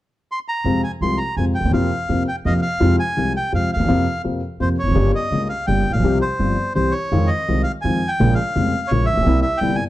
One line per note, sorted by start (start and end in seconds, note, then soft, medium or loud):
0.32 0.39 C6 medium
0.48 0.82 A#5 medium
0.64 0.80 F2 medium
0.64 0.81 F2 medium
0.64 0.81 C3 medium
0.64 0.81 F3 medium
0.64 0.81 G#3 soft
0.64 0.81 F4 medium
0.83 0.92 G#5 medium
1.01 1.16 C2 soft
1.01 1.17 C2 soft
1.01 1.17 C3 soft
1.01 1.17 F3 soft
1.01 1.17 G#3 soft
1.01 1.17 F4 soft
1.01 1.19 C6 medium
1.18 1.35 A#5 medium
1.37 1.52 F2 soft
1.37 1.53 F2 soft
1.37 1.53 C3 soft
1.37 1.53 F3 soft
1.37 1.53 G#3 soft
1.37 1.53 F4 soft
1.37 1.45 G#5 medium
1.55 1.72 G5 medium
1.60 1.65 D2 soft
1.60 1.64 D2 soft
1.64 1.67 D#2 soft
1.64 1.69 D#2 soft
1.64 1.72 E2 medium
1.69 1.74 E2 medium
1.69 1.88 F2 medium
1.69 1.88 C3 medium
1.69 1.89 F3 medium
1.74 1.89 F2 medium
1.74 1.89 A#3 medium
1.74 1.89 F4 medium
1.74 2.23 F5 medium
2.09 2.24 F2 soft
2.09 2.24 C3 soft
2.09 2.24 F3 soft
2.09 2.24 A#3 soft
2.09 2.25 F4 soft
2.28 2.36 G5 medium
2.45 2.60 F2 soft
2.45 2.60 C3 soft
2.45 2.61 F3 soft
2.45 2.60 A#3 soft
2.45 2.61 F4 soft
2.45 2.54 D#5 medium
2.45 2.61 F5 medium
2.62 2.96 F5 medium
2.80 2.96 F2 medium
2.80 2.96 C3 medium
2.80 2.96 F3 medium
2.80 2.96 G#3 medium
2.80 2.96 F4 medium
2.99 3.33 G#5 medium
3.17 3.32 C2 soft
3.17 3.32 C3 soft
3.17 3.32 F3 soft
3.17 3.32 G#3 soft
3.17 3.33 F4 soft
3.36 3.53 G5 medium
3.52 3.68 F2 soft
3.52 3.68 C3 soft
3.52 3.68 F3 soft
3.52 3.68 G#3 soft
3.52 3.68 F4 soft
3.52 3.71 F5 medium
3.73 3.79 D2 soft
3.73 3.80 D2 soft
3.73 4.22 F5 medium
3.80 3.84 D#2 soft
3.80 3.84 D#2 medium
3.84 3.89 E2 medium
3.88 4.04 F2 medium
3.88 4.03 C3 medium
3.88 4.04 F3 medium
3.88 4.04 A#3 medium
3.88 4.04 F4 medium
4.24 4.39 F2 soft
4.24 4.40 F2 soft
4.24 4.39 C3 soft
4.24 4.39 F3 soft
4.24 4.40 A#3 soft
4.24 4.40 F4 soft
4.60 4.75 F2 medium
4.60 4.75 F2 soft
4.60 4.75 C3 soft
4.60 4.75 F3 soft
4.60 4.75 A#3 soft
4.60 4.75 F4 soft
4.60 4.69 C5 medium
4.79 4.86 E1 soft
4.79 5.12 C#5 medium
4.83 4.91 F1 medium
4.83 4.87 E2 soft
4.87 4.91 F2 soft
4.91 4.95 F#1 medium
4.91 5.10 G1 medium
4.91 4.96 F#2 medium
4.96 5.11 G1 medium
4.96 5.11 G2 medium
4.96 5.11 C#3 medium
4.96 5.11 G3 medium
4.96 5.11 A#3 medium
4.96 5.11 G4 medium
5.15 5.48 D#5 medium
5.31 5.46 C#2 soft
5.31 5.47 C#2 soft
5.31 5.47 C#3 soft
5.31 5.47 G3 soft
5.31 5.47 A#3 soft
5.31 5.47 G4 soft
5.49 5.66 F5 medium
5.67 5.83 G1 medium
5.67 5.83 G1 soft
5.67 5.83 G2 soft
5.67 5.83 C#3 soft
5.67 5.83 G3 soft
5.67 5.83 A#3 soft
5.67 5.83 G4 soft
5.67 5.92 G5 medium
5.90 5.94 A1 soft
5.90 5.95 A1 soft
5.90 6.19 F5 medium
5.95 5.98 A#1 medium
5.95 5.99 A#1 soft
5.99 6.02 B1 medium
5.99 6.04 B1 medium
5.99 6.18 C2 medium
6.04 6.19 C2 medium
6.04 6.19 C3 medium
6.04 6.19 F3 medium
6.04 6.19 G3 medium
6.04 6.19 C4 medium
6.04 6.19 G4 medium
6.21 6.73 C5 medium
6.39 6.54 G1 soft
6.39 6.55 G1 soft
6.39 6.55 G2 soft
6.39 6.55 F3 soft
6.39 6.55 G3 soft
6.39 6.55 C4 soft
6.39 6.55 G4 soft
6.75 6.91 C2 soft
6.75 6.91 C3 soft
6.75 6.91 E3 soft
6.75 6.91 G3 soft
6.75 6.91 C4 soft
6.75 6.91 G4 soft
6.75 6.94 C5 medium
6.91 7.30 C#5 medium
7.12 7.27 F2 medium
7.12 7.27 D#3 medium
7.12 7.27 F3 medium
7.12 7.27 G#3 medium
7.12 7.27 C4 medium
7.12 7.27 F4 medium
7.27 7.62 D#5 medium
7.48 7.64 C2 soft
7.48 7.64 C3 soft
7.48 7.63 D#3 soft
7.48 7.63 G#3 soft
7.48 7.63 C4 soft
7.48 7.64 F4 soft
7.63 7.72 F5 medium
7.81 7.99 F2 medium
7.81 8.00 F2 soft
7.81 7.99 D#3 soft
7.81 8.00 F3 soft
7.81 8.00 G#3 soft
7.81 8.00 C4 soft
7.81 8.00 F4 soft
7.81 8.11 G#5 medium
8.08 8.34 G5 medium
8.20 8.35 A#1 medium
8.20 8.36 A#2 medium
8.20 8.35 C#3 medium
8.20 8.35 G#3 medium
8.20 8.35 A#3 medium
8.20 8.35 F4 medium
8.35 8.92 F5 medium
8.56 8.71 F1 medium
8.56 8.71 F1 soft
8.56 8.71 F2 soft
8.56 8.71 C#3 soft
8.56 8.71 G#3 soft
8.56 8.71 A#3 soft
8.56 8.71 F4 soft
8.88 9.06 A#1 medium
8.88 9.06 C#3 soft
8.88 9.06 C#5 medium
8.92 9.07 A#1 soft
8.92 9.07 A#2 soft
8.92 9.07 G#3 soft
8.92 9.07 A#3 soft
8.92 9.07 F4 soft
9.06 9.40 E5 medium
9.13 9.17 A1 soft
9.13 9.18 A1 soft
9.13 9.22 A#1 soft
9.13 9.20 A#1 medium
9.21 9.26 B1 medium
9.21 9.27 B1 medium
9.26 9.42 C2 medium
9.26 9.42 C3 medium
9.26 9.42 G3 medium
9.26 9.42 A#3 medium
9.26 9.42 E4 medium
9.42 9.60 E5 medium
9.58 9.77 G1 soft
9.58 9.77 G2 soft
9.58 9.76 G5 medium
9.62 9.77 G1 soft
9.62 9.77 C3 soft
9.62 9.77 G3 soft
9.62 9.77 A#3 soft
9.62 9.77 E4 soft
9.75 9.84 G#5 medium